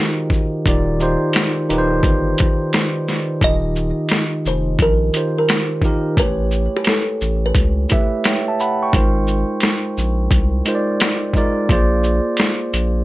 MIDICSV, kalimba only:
0, 0, Header, 1, 2, 480
1, 0, Start_track
1, 0, Key_signature, -3, "major"
1, 0, Tempo, 689655
1, 459, Time_signature, 4, 2, 24, 8
1, 9078, End_track
2, 0, Start_track
2, 0, Title_t, "Kalimba"
2, 0, Program_c, 0, 108
2, 2396, Note_on_c, 0, 75, 99
2, 3079, Note_off_c, 0, 75, 0
2, 3115, Note_on_c, 0, 72, 72
2, 3323, Note_off_c, 0, 72, 0
2, 3357, Note_on_c, 0, 70, 84
2, 3718, Note_off_c, 0, 70, 0
2, 3748, Note_on_c, 0, 70, 70
2, 3818, Note_off_c, 0, 70, 0
2, 4312, Note_on_c, 0, 71, 101
2, 4676, Note_off_c, 0, 71, 0
2, 4709, Note_on_c, 0, 67, 92
2, 4779, Note_off_c, 0, 67, 0
2, 4797, Note_on_c, 0, 69, 72
2, 5158, Note_off_c, 0, 69, 0
2, 5191, Note_on_c, 0, 71, 61
2, 5398, Note_off_c, 0, 71, 0
2, 9078, End_track
0, 0, End_of_file